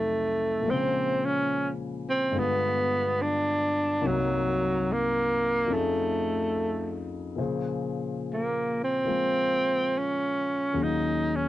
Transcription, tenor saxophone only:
0.00 0.72 A3 medium
0.71 1.27 C4 medium
1.25 1.71 C#4 medium
2.09 2.40 C4 medium
2.38 3.23 B3 medium
3.22 4.08 D4 medium
4.07 4.94 F#3 medium
4.92 5.75 A#3 medium
5.74 7.12 A3 medium
8.33 8.80 A#3 medium
8.84 10.00 C4 medium
9.98 10.84 C#4 medium
10.83 11.37 D#4 medium
11.35 11.48 C#4 medium

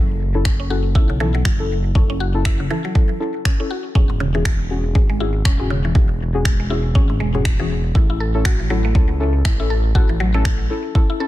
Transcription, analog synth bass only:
0.00 0.97 F#1 loud
0.95 1.42 B1 loud
1.45 1.92 F#1 loud
1.95 2.67 F#1 loud
3.95 4.97 E1 loud
4.95 5.42 G#1 medium
5.45 5.92 E1 loud
5.95 6.97 E1 loud
6.95 7.22 G#1 medium
7.20 7.92 E1 loud
7.95 8.97 A1 loud
8.95 9.42 C#2 medium
9.45 9.92 A1 loud
9.95 10.67 A1 loud

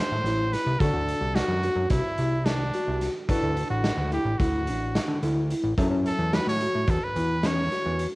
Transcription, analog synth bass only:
0.12 0.22 A2 medium
0.24 0.56 A1 loud
0.66 0.77 C2 medium
0.80 0.91 D2 loud
0.93 1.15 D2 medium
1.21 1.42 C2 medium
1.48 1.70 F#2 medium
1.76 1.87 F#2 medium
1.90 2.01 C2 loud
2.18 2.71 C2 medium
2.88 3.09 C2 medium
3.43 3.64 D2 medium
3.70 3.92 A1 medium
3.97 4.19 D2 medium
4.25 4.36 A1 medium
4.40 4.70 D2 medium
4.68 5.00 A1 medium
5.08 5.19 D3 medium
5.23 5.54 D2 medium
5.64 5.74 A1 medium
5.78 5.88 F#2 loud
5.91 6.12 F#2 medium
6.19 6.40 E2 medium
6.47 6.68 A2 medium
6.75 6.85 A2 medium
6.88 6.98 E2 medium
7.16 7.69 E2 medium
7.86 8.07 E2 medium

